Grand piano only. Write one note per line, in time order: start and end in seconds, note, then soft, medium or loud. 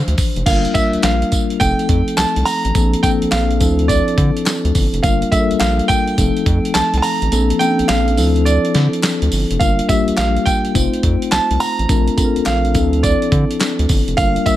0.00 0.13 F5 medium
0.46 0.76 F5 medium
0.74 1.01 E5 medium
1.03 1.57 F5 medium
1.60 2.19 G5 loud
2.17 2.44 A5 loud
2.45 2.99 A#5 loud
3.03 3.09 G5 loud
3.31 3.85 F5 medium
3.88 4.42 D5 medium
5.03 5.30 F5 medium
5.32 5.61 E5 medium
5.59 5.87 F5 loud
5.88 6.77 G5 loud
6.74 6.96 A5 loud
6.98 7.03 A5 medium
7.02 7.62 A#5 loud
7.59 7.89 G5 loud
7.88 8.47 F5 loud
8.45 8.99 D5 medium
9.60 9.87 F5 medium
9.89 10.18 E5 medium
10.17 10.47 F5 loud
10.46 11.28 G5 loud
11.31 11.61 A5 loud
11.60 12.42 A#5 loud
12.46 13.05 F5 loud
13.03 13.56 D5 medium
14.17 14.47 F5 loud
14.46 14.52 E5 loud